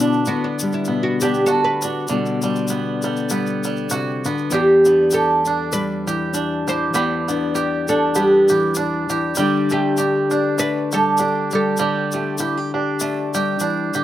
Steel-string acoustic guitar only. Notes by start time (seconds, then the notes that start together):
Already playing: B2 D3 G3 F#4
0.00 B3
0.27 D3 B3
0.62 G3
0.88 B2 B3
1.24 B3
1.50 D3
1.85 F#4
2.10 B2 D3 G3 B3 F#4
2.44 G3
2.71 B3
3.03 A4
3.30 G3
3.91 C3
4.25 D3
4.50 E2
4.85 D4
5.12 G4
5.46 D4
5.73 G3
6.07 E3
6.33 D4
6.67 E3
6.94 E2
7.29 D4
7.55 G4
7.90 D4
8.17 G3
8.51 E3
8.78 D4
9.10 E3
9.38 D3 G3 D4 G4
9.73 D4
9.99 D4
10.32 D4
10.59 D4
10.93 G3
11.20 G4
11.53 G3
11.80 D3
12.15 G4
12.39 E4
12.57 G4
12.74 G4
13.02 D4
13.35 G3
13.60 E3
13.95 D3